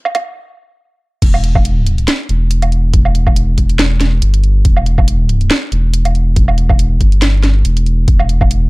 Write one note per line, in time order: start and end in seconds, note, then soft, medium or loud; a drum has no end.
0.05 low woodblock medium
0.15 kick medium
0.15 closed hi-hat medium
0.15 low woodblock medium
1.22 2.06 E1 loud
1.22 kick loud
1.22 closed hi-hat medium
1.22 crash loud
1.34 low woodblock medium
1.44 closed hi-hat medium
1.55 kick loud
1.55 low woodblock medium
1.65 closed hi-hat medium
1.87 closed hi-hat medium
1.98 closed hi-hat soft
2.08 snare loud
2.08 closed hi-hat medium
2.29 3.56 E1 loud
2.29 closed hi-hat medium
2.51 closed hi-hat medium
2.62 closed hi-hat medium
2.62 low woodblock medium
2.72 closed hi-hat soft
2.94 kick loud
2.94 closed hi-hat medium
3.05 low woodblock medium
3.15 closed hi-hat medium
3.27 kick loud
3.27 low woodblock medium
3.36 closed hi-hat medium
3.58 4.21 E1 loud
3.58 kick medium
3.58 closed hi-hat medium
3.69 closed hi-hat soft
3.79 snare loud
3.79 closed hi-hat medium
4.01 snare medium
4.01 closed hi-hat medium
4.22 4.63 G1 loud
4.22 closed hi-hat medium
4.34 closed hi-hat medium
4.44 closed hi-hat soft
4.65 5.49 E1 loud
4.65 kick loud
4.65 closed hi-hat medium
4.77 low woodblock medium
4.86 closed hi-hat medium
4.98 kick loud
4.98 low woodblock medium
5.08 closed hi-hat medium
5.29 closed hi-hat medium
5.41 closed hi-hat soft
5.51 snare loud
5.51 closed hi-hat medium
5.72 6.99 E1 loud
5.72 closed hi-hat medium
5.94 closed hi-hat medium
6.05 closed hi-hat medium
6.05 low woodblock soft
6.15 closed hi-hat soft
6.36 kick loud
6.36 closed hi-hat medium
6.48 low woodblock medium
6.58 closed hi-hat soft
6.69 kick loud
6.69 low woodblock medium
6.79 closed hi-hat medium
7.01 7.63 G1 loud
7.01 kick medium
7.01 closed hi-hat medium
7.12 closed hi-hat soft
7.22 snare loud
7.22 closed hi-hat medium
7.43 snare medium
7.43 closed hi-hat medium
7.65 8.06 E1 loud
7.65 closed hi-hat medium
7.77 closed hi-hat medium
7.86 closed hi-hat soft
8.08 8.67 E1 loud
8.08 kick loud
8.08 closed hi-hat medium
8.19 low woodblock medium
8.29 closed hi-hat medium
8.41 kick loud
8.41 low woodblock medium
8.51 closed hi-hat medium
8.67 8.70 D#1 loud